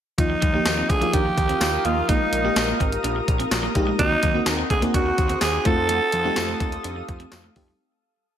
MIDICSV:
0, 0, Header, 1, 8, 480
1, 0, Start_track
1, 0, Tempo, 476190
1, 183, Time_signature, 4, 2, 24, 8
1, 8442, End_track
2, 0, Start_track
2, 0, Title_t, "Ambient pad"
2, 0, Program_c, 0, 92
2, 184, Note_on_c, 0, 70, 75
2, 184, Note_on_c, 0, 87, 80
2, 188, Note_on_c, 0, 77, 69
2, 2087, Note_off_c, 0, 77, 0
2, 2109, Note_on_c, 0, 82, 73
2, 3985, Note_off_c, 0, 70, 0
2, 4007, Note_off_c, 0, 82, 0
2, 4015, Note_on_c, 0, 78, 70
2, 4017, Note_on_c, 0, 72, 76
2, 5663, Note_off_c, 0, 87, 0
2, 5683, Note_off_c, 0, 72, 0
2, 5683, Note_off_c, 0, 78, 0
2, 5703, Note_on_c, 0, 69, 78
2, 5703, Note_on_c, 0, 77, 70
2, 5705, Note_on_c, 0, 87, 90
2, 7842, Note_off_c, 0, 69, 0
2, 7842, Note_off_c, 0, 77, 0
2, 7843, Note_off_c, 0, 87, 0
2, 8442, End_track
3, 0, Start_track
3, 0, Title_t, "Alto saxophone"
3, 0, Program_c, 1, 65
3, 195, Note_on_c, 1, 63, 91
3, 905, Note_on_c, 1, 68, 98
3, 920, Note_off_c, 1, 63, 0
3, 1145, Note_on_c, 1, 67, 101
3, 1160, Note_off_c, 1, 68, 0
3, 1870, Note_on_c, 1, 65, 88
3, 1885, Note_off_c, 1, 67, 0
3, 2103, Note_on_c, 1, 63, 87
3, 2118, Note_off_c, 1, 65, 0
3, 3063, Note_off_c, 1, 63, 0
3, 4025, Note_on_c, 1, 63, 117
3, 4471, Note_off_c, 1, 63, 0
3, 4743, Note_on_c, 1, 68, 87
3, 4851, Note_off_c, 1, 68, 0
3, 4986, Note_on_c, 1, 66, 94
3, 5431, Note_off_c, 1, 66, 0
3, 5458, Note_on_c, 1, 68, 102
3, 5704, Note_on_c, 1, 69, 122
3, 5719, Note_off_c, 1, 68, 0
3, 7384, Note_off_c, 1, 69, 0
3, 8442, End_track
4, 0, Start_track
4, 0, Title_t, "FM electric piano"
4, 0, Program_c, 2, 5
4, 179, Note_on_c, 2, 53, 65
4, 182, Note_on_c, 2, 58, 56
4, 187, Note_on_c, 2, 63, 60
4, 193, Note_on_c, 2, 65, 72
4, 353, Control_c, 2, 64, 127
4, 406, Note_off_c, 2, 53, 0
4, 408, Note_off_c, 2, 58, 0
4, 410, Note_off_c, 2, 63, 0
4, 413, Note_off_c, 2, 65, 0
4, 540, Note_on_c, 2, 58, 60
4, 541, Note_on_c, 2, 53, 62
4, 547, Note_on_c, 2, 63, 59
4, 550, Note_on_c, 2, 67, 72
4, 842, Note_off_c, 2, 53, 0
4, 842, Note_off_c, 2, 58, 0
4, 845, Note_off_c, 2, 63, 0
4, 847, Note_off_c, 2, 67, 0
4, 1015, Note_on_c, 2, 53, 68
4, 1021, Note_on_c, 2, 58, 67
4, 1023, Note_on_c, 2, 63, 63
4, 1028, Note_on_c, 2, 65, 78
4, 1619, Note_off_c, 2, 53, 0
4, 1622, Note_off_c, 2, 58, 0
4, 1623, Note_off_c, 2, 63, 0
4, 1626, Note_off_c, 2, 65, 0
4, 2099, Note_on_c, 2, 56, 66
4, 2103, Note_on_c, 2, 58, 57
4, 2108, Note_on_c, 2, 63, 59
4, 2111, Note_on_c, 2, 65, 72
4, 2117, Control_c, 2, 64, 0
4, 2264, Control_c, 2, 64, 127
4, 2326, Note_off_c, 2, 56, 0
4, 2328, Note_off_c, 2, 58, 0
4, 2330, Note_off_c, 2, 63, 0
4, 2332, Note_off_c, 2, 65, 0
4, 2457, Note_on_c, 2, 56, 69
4, 2462, Note_on_c, 2, 58, 64
4, 2464, Note_on_c, 2, 63, 63
4, 2470, Note_on_c, 2, 67, 80
4, 3060, Note_off_c, 2, 56, 0
4, 3062, Note_off_c, 2, 58, 0
4, 3063, Note_off_c, 2, 63, 0
4, 3066, Note_off_c, 2, 67, 0
4, 3778, Note_on_c, 2, 56, 85
4, 3784, Note_on_c, 2, 58, 78
4, 3787, Note_on_c, 2, 63, 83
4, 3793, Note_on_c, 2, 67, 98
4, 3931, Note_off_c, 2, 56, 0
4, 3934, Note_off_c, 2, 58, 0
4, 3935, Note_off_c, 2, 63, 0
4, 3938, Note_off_c, 2, 67, 0
4, 4019, Note_on_c, 2, 58, 69
4, 4021, Note_on_c, 2, 60, 61
4, 4025, Note_on_c, 2, 63, 61
4, 4030, Note_on_c, 2, 66, 75
4, 4039, Control_c, 2, 64, 0
4, 4228, Control_c, 2, 64, 127
4, 4246, Note_off_c, 2, 58, 0
4, 4247, Note_off_c, 2, 60, 0
4, 4249, Note_off_c, 2, 63, 0
4, 4252, Note_off_c, 2, 66, 0
4, 4374, Note_on_c, 2, 58, 67
4, 4379, Note_on_c, 2, 60, 61
4, 4384, Note_on_c, 2, 63, 62
4, 4388, Note_on_c, 2, 66, 74
4, 4679, Note_off_c, 2, 58, 0
4, 4681, Note_off_c, 2, 60, 0
4, 4684, Note_off_c, 2, 63, 0
4, 4686, Note_off_c, 2, 66, 0
4, 4860, Note_on_c, 2, 58, 77
4, 4861, Note_on_c, 2, 60, 71
4, 4866, Note_on_c, 2, 63, 69
4, 4870, Note_on_c, 2, 68, 82
4, 5462, Note_off_c, 2, 58, 0
4, 5462, Note_off_c, 2, 60, 0
4, 5464, Note_off_c, 2, 63, 0
4, 5466, Note_off_c, 2, 68, 0
4, 5693, Note_on_c, 2, 57, 75
4, 5699, Note_on_c, 2, 60, 72
4, 5703, Note_on_c, 2, 63, 73
4, 5708, Note_on_c, 2, 65, 84
4, 5716, Control_c, 2, 64, 0
4, 5898, Control_c, 2, 64, 127
4, 6179, Note_off_c, 2, 57, 0
4, 6181, Note_off_c, 2, 60, 0
4, 6183, Note_off_c, 2, 63, 0
4, 6186, Note_off_c, 2, 65, 0
4, 6296, Note_on_c, 2, 57, 89
4, 6298, Note_on_c, 2, 60, 75
4, 6303, Note_on_c, 2, 63, 79
4, 6306, Note_on_c, 2, 67, 93
4, 6899, Note_off_c, 2, 57, 0
4, 6900, Note_off_c, 2, 60, 0
4, 6903, Note_off_c, 2, 63, 0
4, 6904, Note_off_c, 2, 67, 0
4, 7614, Note_on_c, 2, 57, 86
4, 7621, Note_on_c, 2, 60, 87
4, 7621, Note_on_c, 2, 63, 82
4, 7625, Note_on_c, 2, 67, 99
4, 7769, Note_off_c, 2, 57, 0
4, 7772, Note_off_c, 2, 60, 0
4, 7772, Note_off_c, 2, 63, 0
4, 7774, Note_off_c, 2, 67, 0
4, 7876, Control_c, 2, 64, 0
4, 8442, End_track
5, 0, Start_track
5, 0, Title_t, "Clean electric guitar"
5, 0, Program_c, 3, 27
5, 419, Note_on_c, 3, 55, 72
5, 518, Note_off_c, 3, 55, 0
5, 541, Note_on_c, 3, 58, 68
5, 640, Note_off_c, 3, 58, 0
5, 783, Note_on_c, 3, 60, 69
5, 881, Note_off_c, 3, 60, 0
5, 1021, Note_on_c, 3, 58, 71
5, 1120, Note_off_c, 3, 58, 0
5, 1146, Note_on_c, 3, 62, 79
5, 1243, Note_off_c, 3, 62, 0
5, 1504, Note_on_c, 3, 60, 70
5, 1602, Note_off_c, 3, 60, 0
5, 1871, Note_on_c, 3, 58, 60
5, 1966, Note_off_c, 3, 58, 0
5, 2107, Note_on_c, 3, 58, 80
5, 2203, Note_off_c, 3, 58, 0
5, 2466, Note_on_c, 3, 56, 71
5, 2563, Note_off_c, 3, 56, 0
5, 2705, Note_on_c, 3, 58, 75
5, 2802, Note_off_c, 3, 58, 0
5, 2828, Note_on_c, 3, 60, 74
5, 2924, Note_off_c, 3, 60, 0
5, 3065, Note_on_c, 3, 62, 78
5, 3163, Note_off_c, 3, 62, 0
5, 3422, Note_on_c, 3, 60, 73
5, 3520, Note_off_c, 3, 60, 0
5, 3660, Note_on_c, 3, 58, 78
5, 3759, Note_off_c, 3, 58, 0
5, 3899, Note_on_c, 3, 56, 73
5, 3999, Note_off_c, 3, 56, 0
5, 4264, Note_on_c, 3, 54, 77
5, 4362, Note_off_c, 3, 54, 0
5, 4380, Note_on_c, 3, 58, 76
5, 4479, Note_off_c, 3, 58, 0
5, 4623, Note_on_c, 3, 60, 76
5, 4721, Note_off_c, 3, 60, 0
5, 4862, Note_on_c, 3, 58, 70
5, 4961, Note_off_c, 3, 58, 0
5, 4981, Note_on_c, 3, 62, 81
5, 5080, Note_off_c, 3, 62, 0
5, 5338, Note_on_c, 3, 60, 73
5, 5438, Note_off_c, 3, 60, 0
5, 5697, Note_on_c, 3, 57, 65
5, 5797, Note_off_c, 3, 57, 0
5, 5937, Note_on_c, 3, 57, 84
5, 6038, Note_off_c, 3, 57, 0
5, 6297, Note_on_c, 3, 55, 75
5, 6398, Note_off_c, 3, 55, 0
5, 6539, Note_on_c, 3, 57, 77
5, 6638, Note_off_c, 3, 57, 0
5, 6655, Note_on_c, 3, 60, 77
5, 6756, Note_off_c, 3, 60, 0
5, 6900, Note_on_c, 3, 62, 72
5, 6999, Note_off_c, 3, 62, 0
5, 7256, Note_on_c, 3, 60, 76
5, 7357, Note_off_c, 3, 60, 0
5, 7500, Note_on_c, 3, 57, 81
5, 7599, Note_off_c, 3, 57, 0
5, 7743, Note_on_c, 3, 55, 75
5, 7841, Note_off_c, 3, 55, 0
5, 8442, End_track
6, 0, Start_track
6, 0, Title_t, "Analog synth bass"
6, 0, Program_c, 4, 38
6, 182, Note_on_c, 4, 39, 106
6, 356, Note_off_c, 4, 39, 0
6, 427, Note_on_c, 4, 39, 99
6, 599, Note_off_c, 4, 39, 0
6, 659, Note_on_c, 4, 39, 102
6, 834, Note_off_c, 4, 39, 0
6, 903, Note_on_c, 4, 38, 88
6, 1076, Note_off_c, 4, 38, 0
6, 1142, Note_on_c, 4, 39, 106
6, 1315, Note_off_c, 4, 39, 0
6, 1384, Note_on_c, 4, 39, 99
6, 1557, Note_off_c, 4, 39, 0
6, 1618, Note_on_c, 4, 39, 102
6, 1793, Note_off_c, 4, 39, 0
6, 1864, Note_on_c, 4, 39, 101
6, 2037, Note_off_c, 4, 39, 0
6, 2108, Note_on_c, 4, 34, 106
6, 2279, Note_off_c, 4, 34, 0
6, 2342, Note_on_c, 4, 34, 101
6, 2516, Note_off_c, 4, 34, 0
6, 2579, Note_on_c, 4, 34, 106
6, 2753, Note_off_c, 4, 34, 0
6, 2823, Note_on_c, 4, 32, 97
6, 2996, Note_off_c, 4, 32, 0
6, 3060, Note_on_c, 4, 34, 114
6, 3234, Note_off_c, 4, 34, 0
6, 3304, Note_on_c, 4, 34, 98
6, 3477, Note_off_c, 4, 34, 0
6, 3540, Note_on_c, 4, 34, 106
6, 3714, Note_off_c, 4, 34, 0
6, 3783, Note_on_c, 4, 34, 100
6, 3956, Note_off_c, 4, 34, 0
6, 4022, Note_on_c, 4, 39, 98
6, 4195, Note_off_c, 4, 39, 0
6, 4263, Note_on_c, 4, 39, 101
6, 4436, Note_off_c, 4, 39, 0
6, 4499, Note_on_c, 4, 39, 102
6, 4673, Note_off_c, 4, 39, 0
6, 4740, Note_on_c, 4, 38, 89
6, 4914, Note_off_c, 4, 38, 0
6, 4983, Note_on_c, 4, 39, 110
6, 5156, Note_off_c, 4, 39, 0
6, 5224, Note_on_c, 4, 39, 91
6, 5396, Note_off_c, 4, 39, 0
6, 5458, Note_on_c, 4, 39, 98
6, 5633, Note_off_c, 4, 39, 0
6, 5698, Note_on_c, 4, 41, 94
6, 6045, Note_off_c, 4, 41, 0
6, 6181, Note_on_c, 4, 41, 88
6, 6355, Note_off_c, 4, 41, 0
6, 6422, Note_on_c, 4, 41, 111
6, 6595, Note_off_c, 4, 41, 0
6, 6657, Note_on_c, 4, 39, 90
6, 6832, Note_off_c, 4, 39, 0
6, 6901, Note_on_c, 4, 41, 109
6, 7075, Note_off_c, 4, 41, 0
6, 7142, Note_on_c, 4, 41, 103
6, 7315, Note_off_c, 4, 41, 0
6, 7384, Note_on_c, 4, 41, 102
6, 7556, Note_off_c, 4, 41, 0
6, 7620, Note_on_c, 4, 41, 114
6, 7794, Note_off_c, 4, 41, 0
6, 8442, End_track
7, 0, Start_track
7, 0, Title_t, "Muted clean electric guitar strokes"
7, 299, Note_on_c, 9, 29, 43
7, 400, Note_off_c, 9, 29, 0
7, 905, Note_on_c, 9, 29, 44
7, 1006, Note_off_c, 9, 29, 0
7, 1267, Note_on_c, 9, 29, 43
7, 1367, Note_off_c, 9, 29, 0
7, 2350, Note_on_c, 9, 29, 42
7, 2451, Note_off_c, 9, 29, 0
7, 2585, Note_on_c, 9, 29, 41
7, 2686, Note_off_c, 9, 29, 0
7, 3185, Note_on_c, 9, 29, 44
7, 3286, Note_off_c, 9, 29, 0
7, 3781, Note_on_c, 9, 29, 45
7, 3882, Note_off_c, 9, 29, 0
7, 4145, Note_on_c, 9, 29, 43
7, 4246, Note_off_c, 9, 29, 0
7, 4741, Note_on_c, 9, 29, 44
7, 4841, Note_off_c, 9, 29, 0
7, 5100, Note_on_c, 9, 29, 46
7, 5201, Note_off_c, 9, 29, 0
7, 6178, Note_on_c, 9, 29, 42
7, 6279, Note_off_c, 9, 29, 0
7, 6420, Note_on_c, 9, 29, 42
7, 6521, Note_off_c, 9, 29, 0
7, 7018, Note_on_c, 9, 29, 47
7, 7119, Note_off_c, 9, 29, 0
7, 7623, Note_on_c, 9, 29, 44
7, 7724, Note_off_c, 9, 29, 0
7, 8442, End_track
8, 0, Start_track
8, 0, Title_t, "Drums"
8, 184, Note_on_c, 9, 36, 99
8, 186, Note_on_c, 9, 42, 89
8, 285, Note_off_c, 9, 36, 0
8, 286, Note_off_c, 9, 42, 0
8, 425, Note_on_c, 9, 42, 75
8, 427, Note_on_c, 9, 36, 96
8, 526, Note_off_c, 9, 42, 0
8, 528, Note_off_c, 9, 36, 0
8, 661, Note_on_c, 9, 38, 103
8, 662, Note_on_c, 9, 42, 73
8, 664, Note_on_c, 9, 54, 80
8, 761, Note_off_c, 9, 38, 0
8, 763, Note_off_c, 9, 42, 0
8, 765, Note_off_c, 9, 54, 0
8, 903, Note_on_c, 9, 36, 94
8, 906, Note_on_c, 9, 42, 62
8, 1004, Note_off_c, 9, 36, 0
8, 1007, Note_off_c, 9, 42, 0
8, 1024, Note_on_c, 9, 42, 48
8, 1125, Note_off_c, 9, 42, 0
8, 1144, Note_on_c, 9, 36, 89
8, 1144, Note_on_c, 9, 42, 92
8, 1245, Note_off_c, 9, 36, 0
8, 1245, Note_off_c, 9, 42, 0
8, 1387, Note_on_c, 9, 36, 83
8, 1387, Note_on_c, 9, 42, 66
8, 1487, Note_off_c, 9, 36, 0
8, 1488, Note_off_c, 9, 42, 0
8, 1505, Note_on_c, 9, 42, 51
8, 1606, Note_off_c, 9, 42, 0
8, 1620, Note_on_c, 9, 54, 79
8, 1624, Note_on_c, 9, 38, 91
8, 1627, Note_on_c, 9, 42, 80
8, 1721, Note_off_c, 9, 54, 0
8, 1724, Note_off_c, 9, 38, 0
8, 1727, Note_off_c, 9, 42, 0
8, 1863, Note_on_c, 9, 42, 69
8, 1964, Note_off_c, 9, 42, 0
8, 2106, Note_on_c, 9, 36, 100
8, 2106, Note_on_c, 9, 42, 91
8, 2206, Note_off_c, 9, 42, 0
8, 2207, Note_off_c, 9, 36, 0
8, 2346, Note_on_c, 9, 42, 81
8, 2447, Note_off_c, 9, 42, 0
8, 2581, Note_on_c, 9, 54, 79
8, 2585, Note_on_c, 9, 38, 112
8, 2586, Note_on_c, 9, 42, 77
8, 2682, Note_off_c, 9, 54, 0
8, 2685, Note_off_c, 9, 38, 0
8, 2687, Note_off_c, 9, 42, 0
8, 2825, Note_on_c, 9, 36, 92
8, 2830, Note_on_c, 9, 42, 63
8, 2926, Note_off_c, 9, 36, 0
8, 2931, Note_off_c, 9, 42, 0
8, 2948, Note_on_c, 9, 42, 52
8, 3049, Note_off_c, 9, 42, 0
8, 3068, Note_on_c, 9, 42, 90
8, 3169, Note_off_c, 9, 42, 0
8, 3307, Note_on_c, 9, 36, 88
8, 3308, Note_on_c, 9, 42, 65
8, 3408, Note_off_c, 9, 36, 0
8, 3409, Note_off_c, 9, 42, 0
8, 3425, Note_on_c, 9, 42, 50
8, 3526, Note_off_c, 9, 42, 0
8, 3543, Note_on_c, 9, 38, 93
8, 3543, Note_on_c, 9, 54, 80
8, 3545, Note_on_c, 9, 42, 77
8, 3643, Note_off_c, 9, 38, 0
8, 3643, Note_off_c, 9, 54, 0
8, 3646, Note_off_c, 9, 42, 0
8, 3782, Note_on_c, 9, 42, 64
8, 3784, Note_on_c, 9, 36, 83
8, 3883, Note_off_c, 9, 42, 0
8, 3885, Note_off_c, 9, 36, 0
8, 4024, Note_on_c, 9, 36, 103
8, 4024, Note_on_c, 9, 42, 88
8, 4124, Note_off_c, 9, 36, 0
8, 4125, Note_off_c, 9, 42, 0
8, 4261, Note_on_c, 9, 42, 84
8, 4265, Note_on_c, 9, 36, 100
8, 4362, Note_off_c, 9, 42, 0
8, 4366, Note_off_c, 9, 36, 0
8, 4497, Note_on_c, 9, 38, 104
8, 4499, Note_on_c, 9, 42, 81
8, 4499, Note_on_c, 9, 54, 83
8, 4598, Note_off_c, 9, 38, 0
8, 4600, Note_off_c, 9, 42, 0
8, 4600, Note_off_c, 9, 54, 0
8, 4740, Note_on_c, 9, 36, 98
8, 4742, Note_on_c, 9, 42, 67
8, 4840, Note_off_c, 9, 36, 0
8, 4843, Note_off_c, 9, 42, 0
8, 4861, Note_on_c, 9, 42, 53
8, 4962, Note_off_c, 9, 42, 0
8, 4982, Note_on_c, 9, 36, 91
8, 4984, Note_on_c, 9, 42, 94
8, 5082, Note_off_c, 9, 36, 0
8, 5084, Note_off_c, 9, 42, 0
8, 5222, Note_on_c, 9, 42, 64
8, 5223, Note_on_c, 9, 36, 87
8, 5323, Note_off_c, 9, 42, 0
8, 5324, Note_off_c, 9, 36, 0
8, 5337, Note_on_c, 9, 42, 53
8, 5438, Note_off_c, 9, 42, 0
8, 5454, Note_on_c, 9, 38, 96
8, 5457, Note_on_c, 9, 42, 79
8, 5462, Note_on_c, 9, 54, 81
8, 5555, Note_off_c, 9, 38, 0
8, 5558, Note_off_c, 9, 42, 0
8, 5562, Note_off_c, 9, 54, 0
8, 5697, Note_on_c, 9, 42, 66
8, 5700, Note_on_c, 9, 36, 106
8, 5798, Note_off_c, 9, 42, 0
8, 5801, Note_off_c, 9, 36, 0
8, 5937, Note_on_c, 9, 42, 90
8, 6038, Note_off_c, 9, 42, 0
8, 6173, Note_on_c, 9, 42, 86
8, 6274, Note_off_c, 9, 42, 0
8, 6413, Note_on_c, 9, 38, 114
8, 6415, Note_on_c, 9, 42, 82
8, 6421, Note_on_c, 9, 54, 84
8, 6514, Note_off_c, 9, 38, 0
8, 6516, Note_off_c, 9, 42, 0
8, 6522, Note_off_c, 9, 54, 0
8, 6657, Note_on_c, 9, 36, 99
8, 6658, Note_on_c, 9, 42, 65
8, 6758, Note_off_c, 9, 36, 0
8, 6759, Note_off_c, 9, 42, 0
8, 6777, Note_on_c, 9, 42, 55
8, 6878, Note_off_c, 9, 42, 0
8, 6899, Note_on_c, 9, 42, 97
8, 6999, Note_off_c, 9, 42, 0
8, 7142, Note_on_c, 9, 36, 93
8, 7142, Note_on_c, 9, 42, 66
8, 7242, Note_off_c, 9, 42, 0
8, 7243, Note_off_c, 9, 36, 0
8, 7256, Note_on_c, 9, 42, 53
8, 7357, Note_off_c, 9, 42, 0
8, 7376, Note_on_c, 9, 38, 99
8, 7378, Note_on_c, 9, 42, 81
8, 7387, Note_on_c, 9, 54, 78
8, 7476, Note_off_c, 9, 38, 0
8, 7479, Note_off_c, 9, 42, 0
8, 7488, Note_off_c, 9, 54, 0
8, 7620, Note_on_c, 9, 46, 72
8, 7621, Note_on_c, 9, 36, 84
8, 7720, Note_off_c, 9, 46, 0
8, 7722, Note_off_c, 9, 36, 0
8, 8442, End_track
0, 0, End_of_file